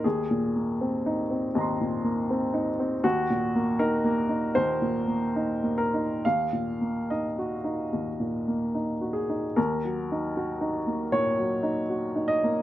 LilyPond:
<<
  \new Staff \with { instrumentName = "Upright piano" } { \time 4/4 \key ees \dorian \tempo 4 = 78 << { r2 <ees'' bes'' c'''>2 | r1 | r1 | \key ees \minor r1 | } \\ { aes'2.~ aes'8 r8 | ges'4 bes'4 c''4. bes'8 | f''4 ees''2 r8 aes'8 | bes'2 des''4. ees''8 | } >> }
  \new Staff \with { instrumentName = "Upright piano" } { \time 4/4 \key ees \dorian \tuplet 3/2 { ees,8 bes,8 bes8 c'8 ees'8 c'8 ees,8 bes,8 bes8 c'8 ees'8 c'8 } | \tuplet 3/2 { ees,8 bes,8 bes8 ees'8 bes8 ees'8 ees,8 bes,8 bes8 ees'8 bes8 ees'8 } | \tuplet 3/2 { ees,8 bes,8 bes8 ees'8 ges'8 ees'8 ees,8 bes,8 bes8 ees'8 ges'8 ees'8 } | \key ees \minor \tuplet 3/2 { ees,8 ges8 ees'8 ges'8 ees'8 bes8 bes,8 ges8 ees'8 ges'8 ees'8 bes8 } | }
>>